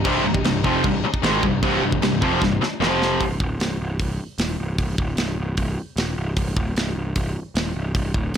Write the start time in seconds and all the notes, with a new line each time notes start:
Already playing: C3 G3 D4 D#4
0.04 C1 C2 G2 C3, kick, crash
0.24 C1 C2 G2
0.34 kick
0.44 C1 C2 G2, snare, crash
0.64 F1 F2 C3 F3, kick
0.84 C1 C2 G2, kick, crash
1.03 muted picked electric bass stroke, muted distorted electric guitar stroke
1.14 kick
1.23 G#1 G#2 D#3 G#3, snare, crash
1.42 C1 C2 G2, kick
1.62 C1 C2 G2 C3, kick, crash
1.82 C1 C2 G2
1.92 kick
2.02 C1 C2 G2, snare, crash
2.22 F1 F2 C3 F3, kick
2.41 C1 C2 G2, kick, snare
2.61 muted distorted electric guitar stroke, muted picked electric bass stroke, snare
2.80 F1 F2 C3 F3 C4 F4, snare
3.02 snare
3.21 C1, kick, open hi-hat
3.40 D1, kick
3.60 C1, snare, open hi-hat
3.80 C1
3.99 C1, kick, open hi-hat
4.38 D#1, snare, open hi-hat
4.58 C1
4.78 C1, kick, open hi-hat
4.98 D1, kick
5.17 C1, snare, open hi-hat
5.38 C1
5.57 C1, kick, open hi-hat
5.96 D#1, snare, open hi-hat
6.16 C1
6.37 C1, kick, open hi-hat
6.56 D1, kick
6.75 C1, snare, open hi-hat
6.95 C1
7.16 C1, kick, open hi-hat
7.55 D#1, snare, open hi-hat
7.74 C1
7.95 C1, kick, open hi-hat
8.14 D1, kick
8.34 C1